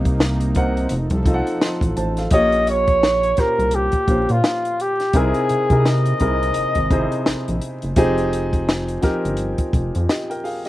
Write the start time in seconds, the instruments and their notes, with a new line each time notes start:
Already playing: analog synth bass C2, analog synth pad C3 A#3 D#4, grand piano A#4 F#5
0.05 kick, closed hi-hat
0.20 snare
0.41 closed hi-hat
0.55 grand piano C3 C4 D#4 A#4 F#5, kick, closed hi-hat
0.77 closed hi-hat
0.89 analog synth bass F1, analog synth pad F3 A4, closed hi-hat
1.10 analog synth bass C2, kick, closed hi-hat
1.26 grand piano F3 C4 D#4 A4 F5, kick, closed hi-hat
1.34 grand piano F#5
1.47 closed hi-hat
1.62 grand piano D#5 C6, snare
1.81 analog synth bass A1, kick, closed hi-hat
1.97 analog synth bass A1, grand piano C5 A5, closed hi-hat
2.17 grand piano A4 F5, snare, closed hi-hat
2.31 analog synth bass A#1, grand piano A#2 A#3 C#4 G4 C#5, flugelhorn D#5, kick, closed hi-hat
2.52 closed hi-hat
2.67 flugelhorn C#5, closed hi-hat
2.87 kick, closed hi-hat
3.03 snare
3.23 closed hi-hat
3.37 analog synth bass C2, grand piano A#2 A#3 C#4 G4 C5, flugelhorn A#4, kick, snare, closed hi-hat
3.59 analog synth bass C2, closed hi-hat
3.71 flugelhorn G4, closed hi-hat
3.92 kick, closed hi-hat
4.08 analog synth bass A#1, grand piano A#2 A#3 C#4 G4 C5, kick, closed hi-hat
4.29 analog synth bass A#2, flugelhorn F4, closed hi-hat
4.44 snare
4.65 closed hi-hat
4.80 flugelhorn G4, closed hi-hat
5.00 snare, closed hi-hat
5.13 analog synth bass C2, grand piano C3 C4 D#4 E4 G#4 A#4, flugelhorn G#4, kick, closed hi-hat
5.34 closed hi-hat
5.49 analog synth bass C3, closed hi-hat
5.70 grand piano C3 C4 D#4 E4 G#4 A#4, analog synth bass C3, kick, closed hi-hat
5.86 flugelhorn D#5, snare
6.06 closed hi-hat
6.20 analog synth bass C2, grand piano C3 C4 D#4 E4 G#4 A#4, kick, closed hi-hat
6.43 closed hi-hat
6.54 analog synth bass G#1, closed hi-hat
6.75 analog synth bass G#1, kick, closed hi-hat
6.90 grand piano C3 C4 D#4 E4 G#4 C5, kick, closed hi-hat
7.12 closed hi-hat
7.26 analog synth bass A#1, snare
7.48 analog synth bass A#1, closed hi-hat
7.62 closed hi-hat
7.82 analog synth bass F#1, closed hi-hat
7.96 analog synth bass F1, grand piano F3 C4 D#4 G4 G#4, kick, closed hi-hat
8.18 closed hi-hat
8.33 closed hi-hat
8.53 kick, closed hi-hat
8.69 snare
8.89 closed hi-hat
9.02 analog synth bass G1, grand piano F3 C4 D#4 G4 A#4, kick, snare, closed hi-hat
9.25 analog synth bass G1, closed hi-hat
9.37 closed hi-hat
9.58 kick, closed hi-hat
9.73 analog synth bass F1, kick, closed hi-hat
9.95 analog synth bass F2, closed hi-hat
10.09 grand piano G4 D#5, snare
10.30 grand piano A#4 G5, closed hi-hat
10.44 grand piano G#4 F5, open hi-hat
10.65 grand piano D#5, closed hi-hat